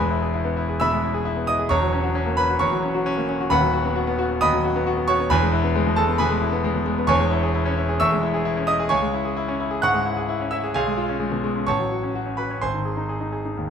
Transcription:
0.00 0.77 E1 medium
0.00 0.78 E2 medium
0.00 0.17 G#3 medium
0.00 0.77 B4 medium
0.00 0.77 G#5 medium
0.00 0.80 B5 loud
0.11 0.29 E4 medium
0.22 0.40 G#4 medium
0.34 0.52 E4 medium
0.45 0.64 B3 medium
0.57 0.76 E4 medium
0.69 0.87 G#4 medium
0.80 0.99 B2 medium
0.80 1.44 E5 medium
0.80 1.45 B5 medium
0.80 1.48 E6 loud
0.92 1.10 G#3 medium
1.03 1.21 E4 medium
1.14 1.32 G#4 medium
1.25 1.43 E4 medium
1.36 1.55 B3 medium
1.47 1.66 E4 medium
1.47 1.69 D#5 medium
1.47 1.70 D#6 loud
1.59 1.70 G#4 medium
1.69 2.57 E1 medium
1.69 2.58 E2 medium
1.69 2.34 C#5 medium
1.69 2.34 A#5 medium
1.69 2.37 C#6 loud
1.81 2.00 F#3 medium
1.93 2.11 C#4 medium
2.03 2.22 F#4 medium
2.15 2.33 C#4 medium
2.26 2.44 A#3 medium
2.37 2.56 C#4 medium
2.37 2.59 B4 medium
2.37 2.60 B5 loud
2.49 2.67 F#4 medium
2.59 3.48 E2 medium
2.59 3.24 C#5 medium
2.59 3.24 A#5 medium
2.59 3.27 C#6 loud
2.71 2.90 F#3 medium
2.82 3.01 C#4 medium
2.94 3.12 F#4 medium
3.06 3.24 C#4 medium
3.17 3.35 A#3 medium
3.29 3.46 C#4 medium
3.41 3.51 F#4 medium
3.50 4.37 D#1 medium
3.50 4.38 D#2 medium
3.50 4.37 B4 medium
3.50 4.37 F#5 medium
3.50 4.40 B5 loud
3.61 3.79 F#3 medium
3.73 3.91 F#4 medium
3.85 4.03 B3 medium
3.95 4.13 F#4 medium
4.07 4.25 B3 medium
4.18 4.36 F#4 medium
4.30 4.47 B3 medium
4.41 5.27 D#2 medium
4.41 5.04 D#5 loud
4.41 5.04 B5 loud
4.41 5.07 D#6 loud
4.53 4.70 F#3 medium
4.64 4.81 F#4 medium
4.76 4.92 B3 medium
4.87 5.03 F#4 medium
4.97 5.14 B3 medium
5.08 5.25 F#4 medium
5.08 5.28 C#5 medium
5.08 5.29 C#6 loud
5.20 5.30 B3 medium
5.30 6.16 E1 medium
5.30 6.16 E2 medium
5.30 5.93 B4 loud
5.30 5.93 G#5 loud
5.30 5.96 B5 loud
5.42 5.59 G#3 medium
5.53 5.70 E4 medium
5.64 5.81 B3 medium
5.76 5.92 G#3 medium
5.87 6.03 B2 medium
5.96 6.14 G#3 medium
5.96 6.18 A4 medium
5.96 6.18 A5 loud
6.08 6.25 B3 medium
6.18 6.37 B2 medium
6.18 6.82 B4 loud
6.18 6.82 G#5 medium
6.18 6.86 B5 loud
6.30 6.48 G#3 medium
6.41 6.59 E4 medium
6.52 6.70 B3 medium
6.64 6.82 G#3 medium
6.75 6.93 B2 medium
6.86 7.04 G#3 medium
6.98 7.09 B3 medium
7.07 7.96 E1 medium
7.07 7.97 E2 medium
7.07 7.95 C#5 loud
7.07 7.95 G#5 loud
7.07 7.99 C#6 loud
7.20 7.38 G#3 medium
7.31 7.49 E4 medium
7.43 7.61 G#4 medium
7.54 7.72 E4 medium
7.65 7.84 C#4 medium
7.77 7.95 E4 medium
7.89 8.06 G#4 medium
8.00 8.88 E2 medium
8.00 8.64 E5 loud
8.00 8.64 C#6 loud
8.00 8.67 E6 loud
8.12 8.29 G#3 medium
8.23 8.40 E4 medium
8.34 8.52 G#4 medium
8.45 8.63 E4 medium
8.57 8.74 C#4 medium
8.67 8.86 E4 medium
8.67 8.89 D#5 medium
8.67 8.90 D#6 loud
8.80 8.90 G#4 medium
8.89 9.80 C#2 medium
8.89 9.78 C#5 medium
8.89 9.78 G#5 medium
8.89 9.82 C#6 loud
9.02 9.20 G#3 medium
9.14 9.31 E4 medium
9.25 9.43 G#4 medium
9.37 9.54 E4 medium
9.48 9.66 C#4 medium
9.60 9.78 E4 medium
9.71 9.89 G#4 medium
9.82 10.01 G#2 medium
9.82 10.47 F#5 loud
9.82 10.47 C#6 loud
9.82 10.51 F#6 loud
9.94 10.12 G#3 medium
10.06 10.24 E4 medium
10.17 10.35 G#4 medium
10.29 10.47 E4 medium
10.41 10.58 C#4 medium
10.51 10.70 E4 medium
10.51 10.73 E5 medium
10.51 10.74 E6 medium
10.64 10.74 G#4 medium
10.74 11.65 B1 medium
10.74 11.64 G#4 medium
10.74 11.64 F5 medium
10.74 11.67 G#5 loud
10.87 11.04 G#3 medium
10.97 11.15 F4 medium
11.09 11.27 C#4 medium
11.20 11.38 G#3 medium
11.32 11.50 B2 medium
11.44 11.62 G#3 medium
11.55 11.67 C#4 medium
11.67 12.59 A1 medium
11.67 12.34 C#5 medium
11.67 12.34 A5 medium
11.67 12.37 C#6 loud
11.79 11.98 F#3 medium
11.92 12.10 F#4 medium
12.03 12.21 C#4 medium
12.15 12.33 F#4 medium
12.26 12.45 C#4 soft
12.37 12.57 F#4 soft
12.37 12.60 B4 medium
12.37 12.61 B5 medium
12.50 12.62 C#4 medium
12.61 13.55 G#1 medium
12.61 13.70 C5 medium
12.61 13.70 G#5 medium
12.61 13.70 C6 medium
12.74 12.93 D#3 medium
12.85 13.04 G#4 medium
12.97 13.16 D#4 medium
13.09 13.28 G#4 medium
13.21 13.40 D#4 medium
13.32 13.52 G#4 medium
13.45 13.64 D#4 soft
13.57 13.70 D#2 medium

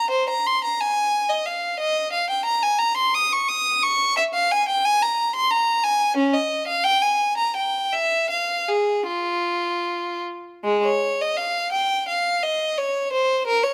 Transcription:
0.00 0.10 A#5 medium
0.10 0.28 C5 medium
0.29 0.46 A#5 medium
0.46 0.63 C6 medium
0.64 0.80 A#5 medium
0.80 1.29 G#5 medium
1.30 1.46 D#5 medium
1.45 1.78 F5 medium
1.80 2.12 D#5 medium
2.12 2.29 F5 medium
2.30 2.46 G5 medium
2.45 2.62 A#5 medium
2.63 2.80 G#5 medium
2.79 2.96 A#5 medium
2.97 3.14 C6 medium
3.14 3.31 D#6 medium
3.33 3.49 C#6 medium
3.48 3.83 D#6 medium
3.83 4.17 C#6 medium
4.17 4.24 E5 medium
4.34 4.50 F5 medium
4.51 4.68 G#5 medium
4.68 4.84 G5 medium
4.85 5.01 G#5 medium
5.02 5.35 A#5 medium
5.35 5.51 C6 medium
5.51 5.84 A#5 medium
5.84 6.17 G#5 medium
6.17 6.34 C#4 medium
6.34 6.68 D#5 medium
6.67 6.85 F5 medium
6.84 7.02 G5 medium
7.02 7.38 G#5 medium
7.37 7.55 A#5 medium
7.56 7.92 G5 medium
7.93 8.31 E5 medium
8.30 8.68 F5 medium
8.68 9.08 G#4 medium
9.07 10.22 F4 medium
10.64 10.83 G#3 medium
10.84 11.20 C#5 medium
11.21 11.38 D#5 medium
11.37 11.73 F5 medium
11.72 12.07 G5 medium
12.08 12.42 F5 medium
12.43 12.78 D#5 medium
12.78 13.12 C#5 medium
13.12 13.46 C5 medium
13.47 13.64 A#4 medium
13.63 13.74 C#5 medium

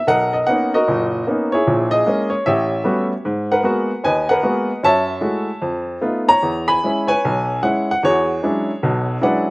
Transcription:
0.07 0.42 B1 medium
0.07 0.74 A#4 medium
0.07 0.32 D#5 medium
0.07 0.34 F#5 loud
0.33 0.47 D#5 medium
0.47 0.75 A#3 medium
0.47 0.75 B3 soft
0.47 0.75 C#4 soft
0.47 0.75 D#4 medium
0.47 0.71 F#5 medium
0.74 1.49 F#4 medium
0.74 1.50 A#4 medium
0.74 1.24 D#5 medium
0.88 1.22 F#1 medium
0.88 1.22 A#2 medium
1.27 1.54 A#3 medium
1.27 1.54 B3 medium
1.27 1.55 C#4 soft
1.27 1.55 D#4 medium
1.52 2.29 E4 medium
1.52 1.92 G#4 medium
1.52 1.93 C#5 medium
1.67 2.01 A#1 medium
1.67 2.01 A#2 medium
1.91 2.43 G#4 medium
1.91 2.33 D#5 loud
2.06 2.33 G#3 medium
2.06 2.33 A#3 medium
2.06 2.34 C#4 medium
2.30 2.46 C#5 medium
2.46 2.81 A1 medium
2.46 3.22 G4 medium
2.46 3.22 C#5 medium
2.46 3.07 E5 medium
2.84 3.12 G3 medium
2.84 3.12 A3 medium
2.84 3.12 B3 medium
2.84 3.12 C#4 soft
2.84 3.12 F#4 medium
3.25 3.59 G#2 medium
3.52 4.26 A#4 medium
3.52 4.04 B4 medium
3.52 4.06 F#5 medium
3.63 3.90 G#3 medium
3.63 3.90 A#3 soft
3.63 3.91 B3 medium
3.63 3.91 F#4 medium
4.04 4.38 D#2 medium
4.04 4.29 B4 medium
4.04 4.79 D#5 medium
4.04 4.30 G#5 medium
4.29 4.80 A#4 medium
4.29 4.80 B4 medium
4.29 4.84 F#5 medium
4.43 4.70 G#3 medium
4.43 4.70 A#3 medium
4.43 4.70 B3 soft
4.43 4.70 F#4 medium
4.83 5.17 F#2 medium
4.83 5.59 C#5 medium
4.83 5.59 E5 medium
4.83 5.99 A5 loud
5.21 5.48 G#3 medium
5.21 5.49 A3 soft
5.21 5.48 E4 soft
5.21 5.49 F#4 medium
5.62 5.97 F2 medium
6.01 6.29 A3 soft
6.01 6.29 B3 soft
6.01 6.30 D#4 soft
6.01 6.30 F4 medium
6.28 7.05 C#5 medium
6.28 6.70 A#5 loud
6.43 6.78 E2 medium
6.68 7.07 G#5 medium
6.68 7.10 B5 loud
6.83 7.11 G#3 medium
6.83 7.11 C#4 soft
6.83 7.11 E4 medium
7.07 7.85 B4 medium
7.07 7.84 C#5 medium
7.07 7.65 G#5 loud
7.25 7.59 B1 medium
7.62 7.90 G#3 medium
7.62 7.90 C#4 soft
7.62 7.90 E4 medium
7.62 7.89 F#5 medium
7.91 8.04 F#5 medium
8.03 8.38 E2 medium
8.03 9.19 F#4 medium
8.03 9.19 G#4 medium
8.03 9.26 C#5 loud
8.43 8.70 F#3 medium
8.43 8.70 G#3 medium
8.43 8.70 C#4 soft
8.43 8.70 D4 medium
8.43 8.70 E4 medium
8.83 9.17 B1 medium
8.83 9.17 B2 medium
9.21 9.48 F#3 medium
9.21 9.49 G#3 medium
9.21 9.49 C#4 medium
9.21 9.48 D4 medium
9.21 9.48 E4 medium
9.21 9.50 B4 medium
9.21 9.50 D5 medium
9.21 9.50 F#5 medium

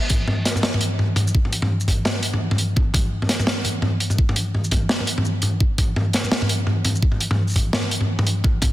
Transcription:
0.10 kick loud
0.10 closed hi-hat medium
0.10 mid tom medium
0.28 mid tom medium
0.45 snare medium
0.45 closed hi-hat medium
0.56 mid tom medium
0.56 shaker medium
0.63 snare loud
0.74 mid tom medium
0.81 closed hi-hat medium
0.99 mid tom medium
1.16 closed hi-hat medium
1.16 mid tom medium
1.27 shaker medium
1.35 kick loud
1.45 mid tom soft
1.53 closed hi-hat medium
1.62 mid tom medium
1.80 shaker medium
1.88 kick medium
1.88 closed hi-hat medium
1.88 mid tom soft
2.05 snare loud
2.05 mid tom medium
2.23 closed hi-hat medium
2.34 mid tom medium
2.51 mid tom medium
2.58 closed hi-hat medium
2.76 kick loud
2.76 mid tom soft
2.94 kick loud
2.94 closed hi-hat medium
2.94 mid tom medium
3.22 mid tom medium
3.29 snare medium
3.29 closed hi-hat medium
3.40 mid tom medium
3.40 shaker medium
3.47 snare loud
3.65 closed hi-hat medium
3.65 mid tom soft
3.82 mid tom medium
4.00 closed hi-hat medium
4.10 mid tom medium
4.10 shaker medium
4.18 kick loud
4.29 mid tom medium
4.36 closed hi-hat medium
4.54 mid tom soft
4.64 shaker soft
4.71 kick medium
4.71 closed hi-hat medium
4.71 mid tom medium
4.89 snare loud
5.00 mid tom soft
5.07 closed hi-hat medium
5.18 mid tom medium
5.25 shaker medium
5.42 closed hi-hat medium
5.42 mid tom medium
5.60 kick loud
5.78 kick loud
5.78 closed hi-hat medium
5.78 mid tom medium
5.96 mid tom medium
6.13 snare medium
6.13 closed hi-hat medium
6.24 mid tom soft
6.24 shaker medium
6.32 snare loud
6.42 mid tom medium
6.49 closed hi-hat medium
6.67 mid tom medium
6.85 closed hi-hat medium
6.85 mid tom medium
6.95 shaker medium
7.03 kick loud
7.12 mid tom soft
7.21 closed hi-hat medium
7.31 mid tom medium
7.48 shaker soft
7.49 shaker soft
7.51 shaker soft
7.53 kick medium
7.53 closed hi-hat medium
7.53 mid tom medium
7.53 shaker soft
7.73 snare loud
7.73 mid tom medium
7.91 closed hi-hat medium
8.01 mid tom medium
8.19 mid tom medium
8.27 closed hi-hat medium
8.44 kick loud
8.44 mid tom medium
8.62 kick loud
8.62 closed hi-hat medium
8.62 mid tom medium

